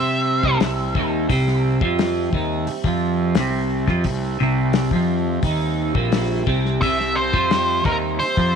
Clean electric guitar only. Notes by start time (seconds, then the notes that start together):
Already playing: C4
0.44 C3
0.62 C3
0.96 D#3
1.30 C3
1.82 F3
2.34 D#3
2.69 muted clean electric guitar stroke
2.85 F3
3.37 C3
3.88 F3
4.06 C3
4.40 C3
4.93 F3
5.44 D#3
5.95 A#2
6.47 C3
6.83 C3
7.34 F3
7.86 D#3
8.21 muted clean electric guitar stroke
8.38 F3